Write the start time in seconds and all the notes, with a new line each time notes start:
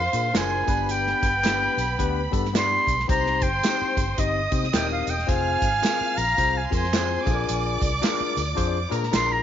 Already playing: C5 F5 C6
0.13 A#2 D4 F4 G#4 A#4, closed hi-hat, tambourine
0.33 F#1 D4 F4 G#4 A#4 G#5, snare, clap, closed hi-hat, tambourine
0.66 G1 B3 D4 G4 B4 B5, kick, closed hi-hat, tambourine
0.89 G5, closed hi-hat, tambourine
1.07 snare
1.23 G1, kick, closed hi-hat, tambourine
1.43 B3 D4 G4 B4, snare, clap, closed hi-hat, tambourine
1.77 B1, closed hi-hat, tambourine
1.99 D2 B3 D4 G4 B4, kick, closed hi-hat
2.31 G2 B3 D4 G4 A4, kick, closed hi-hat, tambourine
2.45 snare
2.53 B3 D4 G4 D5 C6, snare, clap, closed hi-hat, tambourine
2.87 B1, kick, closed hi-hat, tambourine
3.00 snare
3.08 C2 C4 D#4 G4 C5 A#5 C6, kick, closed hi-hat, tambourine
3.26 snare
3.42 G1 G5, kick, closed hi-hat
3.63 C4 D#4 G4 C5, snare, clap, closed hi-hat, tambourine
3.81 muted fingered electric bass stroke
3.97 G1, kick, closed hi-hat, tambourine
4.18 G1 C4 D#4 G4 D#5 D#6, kick, closed hi-hat
4.51 C3 C4 D#4 G4 C5, kick, closed hi-hat, tambourine
4.64 snare
4.73 D#1 C4 D#4 G4 A#4 G5, snare, clap, closed hi-hat, tambourine
4.92 F5
5.07 E1 G5, closed hi-hat, tambourine
5.18 snare
5.27 F1 C4 F4 G#4 C5 F5 G#5 F6, kick, closed hi-hat, tambourine
5.62 G#1, kick, closed hi-hat, tambourine
5.82 C4 F4 G#4 A#4, snare, clap, closed hi-hat, tambourine
6.01 muted fingered electric bass stroke
6.17 A#1 A#5, closed hi-hat, tambourine
6.37 C2 C4 F4 G#4 C5, kick, closed hi-hat, tambourine
6.57 G#5
6.70 F2 C4 F4 G#4 A#4 C5 C6, kick, closed hi-hat, tambourine
6.76 G#5
6.84 snare
6.93 C4 F4 G#4 C5, snare, clap, closed hi-hat, tambourine
7.25 A#1 D4 F4 G#4 A4 D5 D6, kick, closed hi-hat, tambourine
7.33 A#4
7.49 A#1, closed hi-hat, tambourine
7.82 C2, kick, closed hi-hat, tambourine
8.01 D4 F4 G#4 A#4, snare, clap, closed hi-hat, tambourine
8.20 muted fingered electric bass stroke
8.37 D2, closed hi-hat, tambourine
8.55 F2 D4 F4 G#4 C5, kick, closed hi-hat
8.60 tambourine
8.90 A#2 D4 F4 G#4 A#4 A#5, closed hi-hat, tambourine
9.03 snare
9.11 A#1 D4 F4 G#4 A#4 C6, snare, clap, closed hi-hat, tambourine
9.32 A#5